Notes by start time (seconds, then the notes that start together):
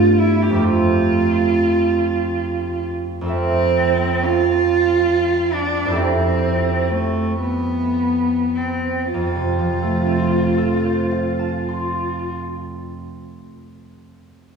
Already playing: G2 A3 B3 D4 F4 G4
0.20 E4
0.42 G4
0.50 F2 A3
0.56 C4 F4
0.62 F4 G4
3.21 F2 F4
3.26 A4 E5
3.32 C4
4.24 F4
5.53 D4
5.86 F2 E4
5.91 G4 A4
5.95 C4 E5
6.91 A3
7.41 B3
8.55 C4
9.13 F2 F4
9.36 C3
9.59 F3
9.82 A3
10.06 C4
10.31 F4
10.58 A4
10.84 C5
11.11 F5
11.39 A5
11.69 C6